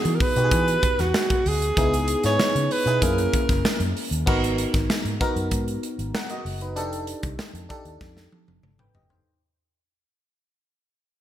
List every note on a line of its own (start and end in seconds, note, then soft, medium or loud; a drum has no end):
0.00 0.36 B3 medium
0.00 0.37 D#4 medium
0.00 0.37 F#4 medium
0.00 0.16 G#4 medium
0.00 0.44 G#4 medium
0.05 0.17 E3 loud
0.05 closed hi-hat medium
0.15 0.24 A#4 medium
0.20 1.02 B4 loud
0.20 kick loud
0.20 open hi-hat medium
0.36 0.49 B2 medium
0.36 1.37 B3 medium
0.36 1.37 D#4 medium
0.36 1.37 F#4 medium
0.36 0.43 G4 medium
0.36 closed hi-hat soft
0.44 1.40 G#4 medium
0.51 0.76 E3 loud
0.51 kick loud
0.51 closed hi-hat loud
0.68 closed hi-hat medium
0.83 kick medium
0.83 closed hi-hat medium
0.99 1.11 E2 medium
0.99 1.50 F#4 loud
0.99 snare soft
0.99 closed hi-hat medium
1.14 snare loud
1.30 kick medium
1.30 closed hi-hat soft
1.46 1.70 D2 medium
1.46 2.25 G#4 loud
1.46 open hi-hat medium
1.62 closed hi-hat medium
1.77 2.14 C#2 loud
1.77 2.15 B3 medium
1.77 2.15 D#4 medium
1.77 2.15 E4 medium
1.77 2.15 G#4 medium
1.77 kick loud
1.77 closed hi-hat medium
1.94 closed hi-hat medium
2.08 closed hi-hat medium
2.24 2.36 G#2 medium
2.24 2.74 B3 medium
2.24 2.74 D#4 medium
2.24 2.74 E4 medium
2.24 2.75 G#4 medium
2.24 2.73 C#5 loud
2.24 snare soft
2.24 closed hi-hat medium
2.40 muted fingered electric bass stroke soft
2.40 snare loud
2.55 2.67 C#3 medium
2.55 closed hi-hat medium
2.71 3.05 B4 loud
2.71 open hi-hat medium
2.86 2.98 B2 medium
2.86 3.02 B3 medium
2.86 3.02 D#4 medium
2.86 3.01 E4 medium
2.86 3.02 G#4 medium
2.86 closed hi-hat soft
3.02 3.27 F#2 loud
3.02 4.02 A#3 medium
3.02 4.03 C#4 medium
3.02 4.03 E4 medium
3.02 4.03 G#4 medium
3.02 3.96 A#4 medium
3.02 kick medium
3.02 closed hi-hat loud
3.18 closed hi-hat medium
3.34 kick medium
3.34 closed hi-hat medium
3.49 3.61 F#1 medium
3.49 kick loud
3.49 snare soft
3.49 closed hi-hat medium
3.65 muted fingered electric bass stroke soft
3.65 snare loud
3.80 3.92 F#2 medium
3.80 closed hi-hat medium
3.97 open hi-hat medium
4.11 4.23 D#2 medium
4.11 closed hi-hat medium
4.26 4.64 G#1 loud
4.26 5.02 B3 medium
4.26 5.02 D#4 medium
4.26 5.02 F#4 medium
4.26 5.03 A#4 loud
4.26 kick loud
4.26 crash medium
4.44 closed hi-hat medium
4.58 closed hi-hat medium
4.74 4.86 G#1 medium
4.74 kick loud
4.74 snare soft
4.74 closed hi-hat medium
4.90 muted fingered electric bass stroke soft
4.90 snare loud
5.05 5.17 G#2 medium
5.05 closed hi-hat soft
5.20 6.21 B3 medium
5.20 6.14 D#4 medium
5.20 6.14 F#4 medium
5.20 6.14 A#4 loud
5.20 kick loud
5.20 closed hi-hat medium
5.36 5.48 F#2 medium
5.36 closed hi-hat soft
5.51 5.76 G#2 loud
5.51 kick loud
5.51 closed hi-hat loud
5.68 closed hi-hat medium
5.83 closed hi-hat medium
5.99 6.11 G#1 medium
5.99 closed hi-hat medium
6.15 6.30 A#4 medium
6.15 6.29 F#5 medium
6.15 snare loud
6.29 6.60 F#4 medium
6.29 6.60 D#5 medium
6.29 closed hi-hat soft
6.45 6.76 F#1 medium
6.45 open hi-hat medium
6.61 6.75 D#4 medium
6.61 6.91 B4 medium
6.61 closed hi-hat soft
6.76 7.13 F1 loud
6.76 7.52 D4 loud
6.76 7.52 D#4 medium
6.76 7.52 G4 medium
6.76 7.52 A4 loud
6.76 closed hi-hat medium
6.93 closed hi-hat medium
7.07 closed hi-hat medium
7.23 7.36 C2 medium
7.23 kick loud
7.23 closed hi-hat medium
7.39 muted fingered electric bass stroke soft
7.39 snare loud
7.54 7.66 F2 medium
7.54 closed hi-hat soft
7.69 8.63 D4 medium
7.69 8.64 D#4 medium
7.69 8.64 G4 medium
7.69 8.64 A4 loud
7.69 kick medium
7.69 closed hi-hat medium
7.85 7.98 D#2 medium
7.85 closed hi-hat soft
8.01 8.26 F2 loud
8.01 kick loud
8.01 snare medium
8.17 snare medium
8.32 high tom medium
8.48 8.60 F1 medium
8.48 high tom medium
8.63 8.88 G1 medium
8.63 mid tom medium
8.79 8.95 B4 medium
8.79 8.95 G5 medium
8.79 mid tom medium
8.95 9.20 F#1 medium
8.95 9.10 G4 medium
8.95 9.10 D#5 medium
8.95 floor tom medium
9.10 9.41 D#4 medium
9.10 9.40 C5 medium
9.10 floor tom medium